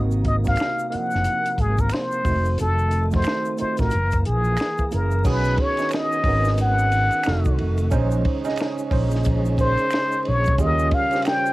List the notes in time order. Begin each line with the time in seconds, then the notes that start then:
Already playing: G#1 C3 A#3 C4 D#4 F#4
0.11 shaker
0.25 D#5, kick, closed hi-hat
0.43 A#3 C4 D#4 F#4, shaker
0.47 F5, kick, snare
0.56 finger snap, closed hi-hat, shaker
0.60 finger snap, snare
0.79 shaker
0.89 A#3 C4 D#4 E4 F5, closed hi-hat
0.94 F#5, muted fretless electric bass stroke
0.99 F3
1.11 snare, shaker
1.15 F#1
1.24 closed hi-hat, shaker
1.45 closed hi-hat, shaker
1.58 G#1 G#4, kick, closed hi-hat
1.78 A#4, kick, shaker
1.89 C5, finger snap, closed hi-hat, shaker
1.94 finger snap, snare
2.12 shaker
2.23 F1 D#3 A3 C4 D#4 F#4, kick, open hi-hat, shaker
2.45 shaker
2.58 F1 A4, closed hi-hat, shaker
2.78 shaker
2.91 closed hi-hat, shaker
3.11 A3 C4 D#4 F#4, kick, snare, shaker
3.15 C5
3.22 finger snap, closed hi-hat, shaker
3.27 finger snap, snare
3.45 shaker
3.57 A3 C4 D#4 F4 C5, muted fretless electric bass stroke, closed hi-hat, shaker
3.77 A1 A3 C4 D#4 F#4 A#4, kick, snare, closed hi-hat, shaker
3.91 F#1 E3 A#3, closed hi-hat, shaker
4.11 kick, closed hi-hat, shaker
4.26 A#1 G#4, closed hi-hat
4.44 shaker
4.57 finger snap, closed hi-hat, shaker
4.60 finger snap, snare
4.78 kick, shaker
4.91 F#1 A#3 C#4 E4 G#4 A#4, closed hi-hat, shaker
5.11 shaker
5.24 B1 D#3 B3 C#4 D#4 F#4 G#4, kick, crash, shaker
5.30 B4
5.44 shaker
5.58 C#5, kick, ride
5.77 C#4 D#4 F#4 B4, snare, ride, shaker
5.89 finger snap, ride, shaker
5.93 D#5, finger snap, snare
6.12 shaker
6.24 G#1 C#4 D#4 F#4, kick, open hi-hat, ride
6.28 A#4
6.45 snare, shaker
6.57 F#5, hi-hat pedal, ride, shaker
6.79 shaker
6.92 ride, shaker
7.11 ride, shaker
7.23 A3 C4 D#4 F#4 A4, finger snap, ride, shaker
7.26 F1, finger snap, snare
7.45 C2, kick, shaker
7.58 F1, ride
7.77 ride, shaker
7.90 A#1 C#3 G#3 C#4 D#4 G#4 C5, kick, ride, shaker
8.11 shaker
8.25 kick, ride
8.44 C#4 D#4 G#4 D#5, ride, shaker
8.48 snare
8.56 finger snap, ride, shaker
8.60 finger snap, snare
8.78 shaker
8.90 A#1 C#4 D#4 G#4 C5, kick, open hi-hat, ride
9.11 ride, shaker
9.15 snare
9.24 kick, hi-hat pedal, ride, shaker
9.45 shaker
9.57 C#4 D#4 G#4 A#4 C5, kick, ride, shaker
9.66 C5
9.78 ride, shaker
9.91 finger snap, ride, shaker
9.93 finger snap, snare
10.12 shaker
10.25 A#1 C#5, ride
10.44 kick, ride, shaker
10.58 D#2 C#3 G3 C#4 F4 G4 G#4 D#5, kick, ride, shaker
10.66 A#4
10.79 shaker
10.91 F5, kick, ride
11.11 C#4 F4 G4 C5, snare, ride, shaker
11.22 finger snap, ride, shaker
11.27 G5, finger snap, snare
11.46 shaker